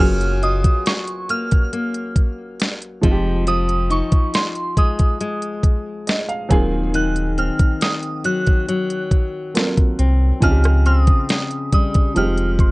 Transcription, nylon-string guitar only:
0.00 3.03 F#3 medium
0.00 0.42 F4 medium
0.43 3.90 F4 medium
1.29 1.72 A#3 medium
1.73 3.12 A#3 medium
3.03 3.46 F3 medium
3.47 6.97 F3 medium
3.90 7.40 D#4 medium
4.77 5.20 G#3 medium
5.21 7.37 G#3 medium
6.51 6.94 D#3 medium
6.94 10.42 D#3 medium
7.38 9.98 C4 medium
8.25 8.67 F#3 medium
8.68 10.51 F#3 medium
9.99 10.85 C4 medium
10.42 12.25 C#3 medium
10.86 12.71 C4 medium
11.73 12.16 G3 medium
12.16 12.71 F3 medium

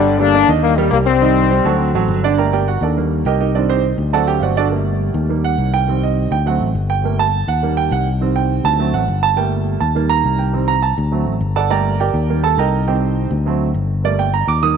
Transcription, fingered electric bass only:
0.00 0.43 G1 medium
0.48 0.89 D#2 loud
0.92 1.59 C2 loud
1.65 1.92 D2 medium
1.94 2.08 A1 medium
2.08 2.76 G1 loud
2.81 3.22 D#2 loud
3.25 3.93 C2 medium
3.98 4.39 D2 loud
4.42 5.09 G1 medium
5.14 5.55 D#2 medium
5.58 6.26 C2 loud
6.31 6.58 D2 medium
6.60 6.74 A1 medium
6.75 7.42 G1 medium
7.48 7.88 D#2 medium
7.91 8.59 C2 loud
8.64 8.91 D2 loud
8.93 9.07 A1 medium
9.08 9.76 G1 medium
9.81 10.22 D#2 medium
10.24 10.92 C2 loud
10.98 11.25 D2 loud
11.26 11.40 A1 medium
11.41 12.09 G1 medium
12.14 12.55 D#2 medium
12.58 13.25 C2 loud
13.31 13.72 D2 medium
13.74 14.42 G1 medium
14.47 14.77 D#2 loud

